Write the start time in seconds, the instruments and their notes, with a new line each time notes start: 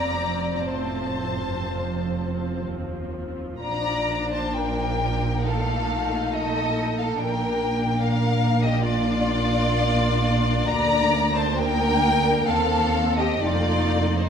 Already playing: double bass section F1, cello section F2, viola section F3 C4, violin section D5 A#5
0.56 violin section A#5
0.63 cello section A2, violin section C5 A5
1.43 cello section G2
1.67 cello section F2
2.64 cello section D#2
3.60 double bass section A#1, cello section A#2, viola section D4, violin section D5 A#5
4.32 violin section C5 A5
4.54 violin section A#4 G5
5.44 viola section A3 D#4, violin section A4 F5
6.32 violin section A4 D#5
6.97 violin section A4 F5
7.17 double bass section A#1, cello section A#2, viola section A#3 D4, violin section A#4 G5
8.00 violin section A#4 F5
8.62 violin section G4 D#5
8.83 violin section F4 D5
10.68 cello section D2, double bass section D2, violin section D5 A#5
11.34 violin section C5 A5
11.55 violin section A#4 G5
12.46 double bass section D#2, cello section D#2, viola section C4, violin section A4 F5
13.17 violin section G4 D#5
13.40 double bass section F1, cello section F2, viola section A3 D#4, violin section F4 D5
14.18 violin section D#4 C5